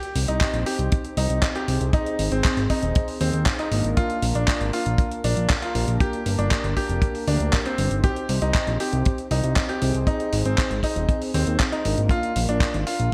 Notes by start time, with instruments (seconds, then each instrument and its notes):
Already playing: grand piano G4
0.03 closed hi-hat
0.16 analog synth bass C2, analog polysynth C4 D#4 G4 C5, open hi-hat
0.28 analog synth bass C2, grand piano D#4, closed hi-hat
0.41 kick, clap, closed hi-hat
0.54 analog synth bass A#1, closed hi-hat
0.66 analog polysynth C4 D#4 G4 C5, grand piano G4, open hi-hat
0.79 analog synth bass C2, closed hi-hat
0.92 kick, closed hi-hat
1.05 closed hi-hat
1.17 analog synth bass C2, analog polysynth C4 D#4 G4 C5, grand piano D#4, open hi-hat
1.30 analog synth bass C2, closed hi-hat
1.42 kick, clap, closed hi-hat
1.55 grand piano G4, closed hi-hat
1.68 analog synth bass C2, analog polysynth C4 D#4 G#4 C5, open hi-hat
1.81 analog synth bass C2, closed hi-hat
1.93 grand piano D#4, kick, closed hi-hat
2.06 closed hi-hat
2.19 analog synth bass G#1, analog polysynth C4 D#4 G#4 C5, open hi-hat
2.32 analog synth bass G#1, grand piano C4, closed hi-hat
2.44 kick, clap, closed hi-hat
2.57 analog synth bass G#1, closed hi-hat
2.70 analog polysynth C4 D#4 G#4 C5, grand piano D#4, kick, open hi-hat
2.83 analog synth bass D#1, closed hi-hat
2.95 kick, closed hi-hat
3.08 open hi-hat
3.21 analog synth bass D#2, analog polysynth C4 D#4 G#4 C5, grand piano C4, open hi-hat
3.33 analog synth bass D#2, closed hi-hat
3.46 kick, clap, closed hi-hat
3.59 grand piano D#4, closed hi-hat
3.71 analog synth bass G#1, analog polysynth A#3 D4 F4 A#4, open hi-hat
3.84 analog synth bass G#1, closed hi-hat
3.97 grand piano F4, kick, closed hi-hat
4.10 closed hi-hat
4.22 analog synth bass A#1, analog polysynth A#3 D4 F4 A#4, open hi-hat
4.35 analog synth bass A#1, grand piano D4, closed hi-hat
4.48 kick, clap, closed hi-hat
4.61 analog synth bass G#1, closed hi-hat
4.73 analog polysynth A#3 D4 F4 A#4, grand piano F4, open hi-hat
4.86 analog synth bass A#1, closed hi-hat
4.98 kick, closed hi-hat
5.11 closed hi-hat
5.24 analog synth bass A#1, analog polysynth A#3 D4 F4 A#4, grand piano D4, open hi-hat
5.37 analog synth bass A#1, closed hi-hat
5.50 kick, clap, closed hi-hat
5.62 grand piano F4, closed hi-hat
5.75 analog synth bass A#1, analog polysynth A#3 D4 G4 A#4, open hi-hat
5.88 analog synth bass A#1, closed hi-hat
6.00 grand piano G4, kick, closed hi-hat
6.13 closed hi-hat
6.26 analog synth bass G1, analog polysynth A#3 D4 G4 A#4, open hi-hat
6.39 analog synth bass G1, grand piano D4, closed hi-hat
6.51 kick, clap, closed hi-hat
6.64 analog synth bass G1, closed hi-hat
6.77 analog polysynth A#3 D4 G4 A#4, grand piano G4, kick, open hi-hat
6.89 analog synth bass F1, closed hi-hat
7.02 kick, closed hi-hat
7.15 open hi-hat
7.27 analog synth bass D2, analog polysynth A#3 D4 G4 A#4, grand piano D4, open hi-hat
7.40 analog synth bass D2, closed hi-hat
7.53 kick, clap, closed hi-hat
7.66 grand piano C4, closed hi-hat
7.78 analog synth bass G1, analog polysynth C4 D#4 G4 C5, open hi-hat
7.91 analog synth bass G1, closed hi-hat
8.04 grand piano G4, kick, closed hi-hat
8.16 closed hi-hat
8.29 analog synth bass C2, analog polysynth C4 D#4 G4 C5, open hi-hat
8.42 analog synth bass C2, grand piano D#4, closed hi-hat
8.54 kick, clap, closed hi-hat
8.67 analog synth bass A#1, closed hi-hat
8.80 analog polysynth C4 D#4 G4 C5, grand piano G4, open hi-hat
8.93 analog synth bass C2, closed hi-hat
9.05 kick, closed hi-hat
9.18 closed hi-hat
9.31 analog synth bass C2, analog polysynth C4 D#4 G4 C5, grand piano D#4, open hi-hat
9.44 analog synth bass C2, closed hi-hat
9.56 kick, clap, closed hi-hat
9.69 grand piano G4, closed hi-hat
9.82 analog synth bass C2, analog polysynth C4 D#4 G#4 C5, open hi-hat
9.94 analog synth bass C2, closed hi-hat
10.07 grand piano D#4, kick, closed hi-hat
10.20 closed hi-hat
10.33 analog synth bass G#1, analog polysynth C4 D#4 G#4 C5, open hi-hat
10.45 analog synth bass G#1, grand piano C4, closed hi-hat
10.58 kick, clap, closed hi-hat
10.71 analog synth bass G#1, closed hi-hat
10.83 analog polysynth C4 D#4 G#4 C5, grand piano D#4, kick, open hi-hat
10.96 analog synth bass D#1, closed hi-hat
11.09 kick, closed hi-hat
11.22 open hi-hat
11.34 analog synth bass D#2, grand piano C4, analog polysynth C4 D#4 G#4 C5, open hi-hat
11.47 analog synth bass D#2, closed hi-hat
11.60 kick, clap, closed hi-hat
11.72 grand piano D#4, closed hi-hat
11.85 analog synth bass G#1, analog polysynth A#3 D4 F4 A#4, open hi-hat
11.98 analog synth bass G#1, closed hi-hat
12.09 grand piano F4, kick, closed hi-hat
12.23 closed hi-hat
12.36 analog synth bass A#1, analog polysynth A#3 D4 F4, open hi-hat
12.49 analog synth bass A#1, grand piano D4, closed hi-hat
12.60 kick, clap, closed hi-hat
12.74 analog synth bass G#1, closed hi-hat
12.87 analog polysynth A#3 D4 A#4, grand piano F4, open hi-hat
13.00 analog synth bass A#1, closed hi-hat